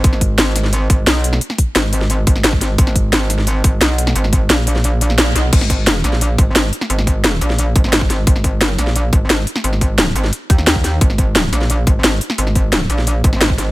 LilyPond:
<<
  \new Staff \with { instrumentName = "Wobble bass" } { \clef bass \time 4/4 \key gis \minor \tempo 4 = 175 gis,,2~ gis,,8 gis,,8 b,,4 | r4 gis,,4. gis,,4. | gis,,2~ gis,,8 gis,,8 b,,4 | gis,,4 ais,,2~ ais,,8 b,,8 |
gis,,4. ais,,4 gis,,8 gis,,8 r8 | gis,,4. ais,,4 gis,,4 gis,,8 | gis,,4. ais,,4 gis,,8 gis,,8 r8 | gis,,4. gis,,8 r8 dis,4. |
gis,,4. ais,,4 gis,,8 gis,,8 r8 | gis,,4. ais,,4 gis,,4 gis,,8 | }
  \new DrumStaff \with { instrumentName = "Drums" } \drummode { \time 4/4 <hh bd>16 sn16 <hh bd>8 <hh sn>8 <hh sn>16 sn16 hh8 <hh bd>8 <hh sn>8 hh16 sn16 | hh16 sn16 <hh bd>8 <hh sn>8 hh16 sn16 hh8 <hh bd>16 sn16 <hh sn>16 bd16 <hh sn>8 | <hh bd>16 sn16 <hh bd>8 <hh sn>8 <hh sn>16 sn16 hh8 <hh bd>8 <hh sn>8 hh16 sn16 | hh16 sn16 <hh bd>8 <hh sn>8 hh16 sn16 hh8 hh16 sn16 <hh sn>8 <hh sn>8 |
<cymc hh bd>16 sn16 <hh bd>8 <hh sn>8 <hh sn>16 sn16 hh8 <hh bd>8 <hh sn>8 hh16 sn16 | hh16 sn16 <hh bd>8 <hh sn>8 hh16 sn16 hh8 <hh bd>16 sn16 <hh sn>16 bd16 <hh sn>8 | <hh bd>16 sn16 <hh bd>8 <hh sn>8 <hh sn>16 sn16 hh8 <hh bd>8 <hh sn>8 hh16 sn16 | hh16 sn16 <hh bd>8 <hh sn>8 hh16 sn16 hh8 <hh bd>16 sn16 <hh sn>16 bd16 <hh sn>8 |
<hh bd>16 sn16 <hh bd>8 <hh sn>8 <hh sn>16 sn16 hh8 <hh bd>8 <hh sn>8 hh16 sn16 | hh16 sn16 <hh bd>8 <hh sn>8 hh16 sn16 hh8 <hh bd>16 sn16 <hh sn>16 bd16 <hh sn>8 | }
>>